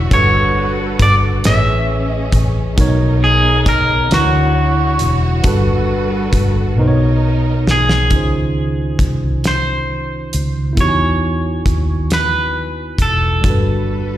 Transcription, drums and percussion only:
0.11 kick, closed hi-hat
1.00 kick, closed hi-hat
1.44 snare, closed hi-hat
2.32 kick, closed hi-hat
2.78 kick, closed hi-hat
3.66 kick, closed hi-hat
4.11 snare, closed hi-hat
4.99 closed hi-hat
5.44 kick, closed hi-hat
6.33 kick, closed hi-hat
7.67 snare
7.89 snare
8.10 kick, closed hi-hat
8.99 kick, closed hi-hat
9.44 snare, closed hi-hat
10.33 closed hi-hat
10.77 kick, closed hi-hat
11.66 kick, closed hi-hat
12.10 snare, closed hi-hat
12.98 kick, closed hi-hat
13.44 kick, closed hi-hat

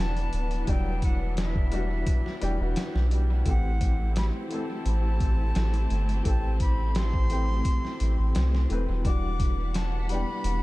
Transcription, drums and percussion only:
0.17 closed hi-hat
0.33 closed hi-hat
0.51 closed hi-hat
0.67 kick, closed hi-hat
1.02 kick, closed hi-hat
1.37 snare, closed hi-hat
1.55 kick
1.72 closed hi-hat
2.07 kick, closed hi-hat
2.26 snare
2.42 closed hi-hat
2.76 snare, closed hi-hat
2.96 snare
3.11 closed hi-hat
3.46 kick, closed hi-hat
3.81 kick, closed hi-hat
4.16 snare, closed hi-hat
4.51 closed hi-hat
4.86 closed hi-hat
5.20 kick, closed hi-hat
5.55 snare, closed hi-hat
5.74 closed hi-hat
5.90 closed hi-hat
6.09 closed hi-hat
6.25 kick, closed hi-hat
6.60 kick, closed hi-hat
6.95 snare, closed hi-hat
7.14 kick
7.30 closed hi-hat
7.65 kick, closed hi-hat
7.85 snare
8.00 closed hi-hat
8.35 snare, closed hi-hat
8.54 snare
8.70 closed hi-hat
9.05 kick, closed hi-hat
9.40 kick, closed hi-hat
9.74 snare, closed hi-hat
10.09 closed hi-hat
10.44 closed hi-hat

